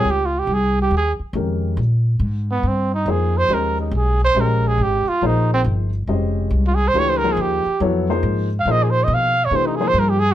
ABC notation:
X:1
M:4/4
L:1/16
Q:"Swing" 1/4=139
K:Bbdor
V:1 name="Trumpet"
(3G2 F2 G2 A2 G2 A2 z6 | z6 _C2 =C2 E2 A2 c2 | B2 E2 A2 c2 B2 A2 G2 F2 | E2 C2 z8 z F A c |
d c B A G4 z6 z f | e A c e f3 d c E A c B G A z |]
V:2 name="Grand piano"
z12 [E,A,DGB]4 | z12 [F,B,EAc]4 | [A,DGce]6 z2 [A,DGce]6 z2 | [F,B,EAc]6 z2 [A,DGce]6 z2 |
[=E,=A,=DG_c]2 [F,B,_E_A=c]4 z2 [_G,_C=E=A_d]2 [F,B,_E_A=c]4 z2 | [F,B,EAc]6 z2 [=E,=A,=DG_c]2 [F,B,_E_A=c]4 z2 |]
V:3 name="Upright bass" clef=bass
D,,4 C,,4 E,,2 z2 F,,4 | B,,4 A,,4 G,,4 F,,4 | E,,4 _C,,4 B,,,4 A,,,2 z2 | B,,,4 G,,,4 F,,,4 C,,4 |
D,,4 E,,2 z2 F,,4 A,,4 | B,,4 _C,4 =C,4 G,,4 |]